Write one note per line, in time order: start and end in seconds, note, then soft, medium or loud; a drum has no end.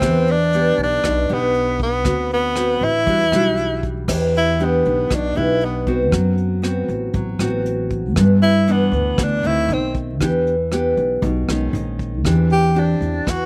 0.00 0.74 E2 loud
0.00 1.00 E3 medium
0.00 0.34 B3 medium
0.00 0.32 C4 medium
0.00 0.34 D4 medium
0.00 0.34 G4 medium
0.00 kick medium
0.00 cross-stick medium
0.00 closed hi-hat soft
0.28 0.80 D4 medium
0.28 closed hi-hat soft
0.53 1.26 B3 medium
0.53 1.26 D4 medium
0.53 1.26 G4 medium
0.53 closed hi-hat soft
0.78 1.01 B1 medium
0.78 closed hi-hat soft
0.83 1.35 D4 medium
1.04 1.27 B1 medium
1.04 2.03 B2 medium
1.04 kick medium
1.04 cross-stick medium
1.04 closed hi-hat soft
1.29 2.05 B1 medium
1.29 2.01 B3 medium
1.29 2.02 D4 medium
1.29 2.02 G4 medium
1.29 closed hi-hat soft
1.33 1.82 B3 medium
1.54 closed hi-hat soft
1.79 2.29 B3 medium
1.79 kick medium
1.79 closed hi-hat soft
2.04 2.77 D2 loud
2.04 3.04 D3 medium
2.04 2.52 C4 soft
2.04 2.52 F#4 medium
2.04 2.52 B4 medium
2.04 kick medium
2.04 cross-stick medium
2.04 closed hi-hat soft
2.31 2.85 B3 medium
2.31 closed hi-hat soft
2.56 2.90 C4 medium
2.56 2.90 F#4 medium
2.56 2.91 B4 medium
2.56 cross-stick medium
2.56 closed hi-hat soft
2.81 3.05 A1 medium
2.81 3.85 E4 medium
2.81 closed hi-hat soft
3.07 3.30 E2 medium
3.07 4.07 E3 soft
3.07 3.23 G3 soft
3.07 3.23 D4 soft
3.07 3.23 F#4 medium
3.07 kick medium
3.07 closed hi-hat soft
3.32 4.05 B1 medium
3.32 4.05 G3 medium
3.32 4.06 D4 medium
3.32 4.06 F#4 medium
3.32 cross-stick medium
3.32 closed hi-hat soft
3.57 closed hi-hat soft
3.83 kick medium
3.83 closed hi-hat soft
4.08 4.81 E2 loud
4.08 5.08 E3 soft
4.08 4.56 B3 soft
4.08 4.56 D4 medium
4.08 4.56 G4 medium
4.08 kick medium
4.08 cross-stick medium
4.08 crash medium
4.34 4.66 E4 medium
4.34 closed hi-hat soft
4.59 5.10 B3 medium
4.59 5.11 D4 medium
4.59 5.11 G4 medium
4.59 closed hi-hat soft
4.64 5.16 B3 medium
4.85 5.09 B1 medium
4.85 closed hi-hat soft
5.11 5.35 B1 medium
5.11 6.10 B2 medium
5.11 5.38 D4 medium
5.11 kick medium
5.11 cross-stick medium
5.11 closed hi-hat soft
5.35 6.12 B1 medium
5.35 5.83 B3 medium
5.35 5.83 D4 medium
5.35 5.66 E4 medium
5.35 5.83 G4 medium
5.35 closed hi-hat soft
5.61 5.89 B3 medium
5.61 closed hi-hat soft
5.86 6.60 B3 medium
5.86 6.60 C4 medium
5.86 6.60 F#4 medium
5.86 kick medium
5.86 closed hi-hat soft
6.11 6.85 F#2 loud
6.11 7.11 F#3 medium
6.11 kick medium
6.11 cross-stick medium
6.11 closed hi-hat soft
6.38 closed hi-hat soft
6.62 7.35 B3 medium
6.62 7.36 C4 medium
6.62 7.36 F#4 medium
6.62 cross-stick medium
6.62 closed hi-hat soft
6.88 7.12 A1 medium
6.88 closed hi-hat soft
7.14 7.38 A1 medium
7.14 8.14 F#3 soft
7.14 kick medium
7.14 closed hi-hat soft
7.39 8.16 A1 medium
7.39 8.13 B3 medium
7.39 8.13 C4 medium
7.39 8.13 F#4 medium
7.39 cross-stick medium
7.39 closed hi-hat soft
7.66 closed hi-hat soft
7.90 kick medium
7.90 closed hi-hat soft
8.16 8.89 G2 loud
8.16 9.16 G2 medium
8.16 8.49 E3 soft
8.16 8.49 B3 soft
8.16 8.50 D4 medium
8.16 kick medium
8.16 cross-stick medium
8.16 closed hi-hat soft
8.42 8.73 E4 medium
8.42 closed hi-hat soft
8.67 9.40 E3 medium
8.67 9.40 B3 medium
8.67 9.41 D4 medium
8.67 closed hi-hat soft
8.72 9.25 B3 medium
8.92 9.16 D2 medium
8.92 closed hi-hat soft
9.18 9.42 D2 medium
9.18 9.67 D3 medium
9.18 kick medium
9.18 cross-stick medium
9.18 closed hi-hat soft
9.23 9.48 D4 medium
9.43 9.67 D2 medium
9.43 10.17 D#3 medium
9.43 10.17 A3 medium
9.43 10.17 C4 medium
9.43 9.74 E4 medium
9.43 closed hi-hat soft
9.69 10.20 B1 medium
9.69 closed hi-hat soft
9.73 9.97 C4 medium
9.94 kick medium
9.94 closed hi-hat soft
10.20 10.93 E2 loud
10.20 11.20 E3 soft
10.20 10.54 B3 soft
10.20 10.54 D4 medium
10.20 10.54 G4 medium
10.20 kick medium
10.20 cross-stick medium
10.20 closed hi-hat soft
10.47 closed hi-hat soft
10.72 11.44 B3 medium
10.72 11.44 D4 medium
10.72 11.45 G4 medium
10.72 cross-stick medium
10.72 closed hi-hat soft
10.97 11.21 B1 medium
10.97 closed hi-hat soft
11.22 11.46 B1 loud
11.22 11.71 B2 soft
11.22 kick medium
11.22 closed hi-hat soft
11.48 11.72 B1 medium
11.48 12.21 D#3 medium
11.48 12.21 G#3 medium
11.48 12.21 C#4 medium
11.48 cross-stick medium
11.48 closed hi-hat soft
11.73 12.24 A#1 medium
11.73 closed hi-hat soft
11.99 kick soft
11.99 closed hi-hat soft
12.24 12.97 E2 loud
12.24 13.24 E3 medium
12.24 12.72 C4 medium
12.24 12.72 D4 medium
12.24 12.72 G4 medium
12.24 kick medium
12.24 cross-stick medium
12.24 closed hi-hat soft
12.50 12.81 G4 medium
12.50 closed hi-hat soft
12.75 13.26 C4 medium
12.75 13.26 D4 medium
12.75 13.26 G4 medium
12.75 closed hi-hat soft
12.79 13.31 D4 medium
13.01 13.24 E2 medium
13.01 closed hi-hat soft
13.27 13.46 E2 medium
13.27 13.46 E3 medium
13.27 13.46 F#4 medium
13.27 kick medium
13.27 cross-stick medium
13.27 closed hi-hat soft